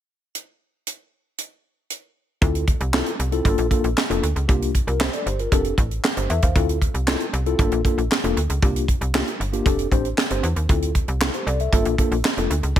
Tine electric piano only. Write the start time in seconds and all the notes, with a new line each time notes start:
2.41 C4 E4 F4 A4
2.93 C4 E4 F4 A4
3.32 C4 E4 F4 A4
3.45 A#3 D4 F4 A4
3.71 A#3 D4 F4 A4
4.09 A#3 D4 F4 A4
4.48 A#3 D4 F4 G4
4.87 F4 A#4
5.01 G4 C5
5.14 A4 D5
5.26 G4 C5
5.40 F4 A#4
5.52 C4 D4 G4 A4
6.17 G4 C5
6.30 A4 E5
6.43 C5 F5
6.55 C4 E4 F4 A4
7.07 C4 E4 F4 A4
7.46 C4 E4 F4 A4
7.59 A#3 D4 F4 A4
7.85 A#3 D4 F4 A4
8.23 A#3 D4 F4 A4
8.62 A#3 D4 F4 G4
9.14 A#3 D4 F4 G4
9.53 A#3 D4 F4 G4
9.65 C4 D4 G4 A4
9.92 C4 D4 G4 C5
10.31 C4 D4 G4 C5
10.69 C4 E4 F4 A4
11.21 E4 A4
11.34 G4 C5
11.47 A4 D5
11.61 A4 E5
11.73 A#3 D4 F4 A4
11.99 A#3 D4 F4 A4
12.38 A#3 D4 F4 A4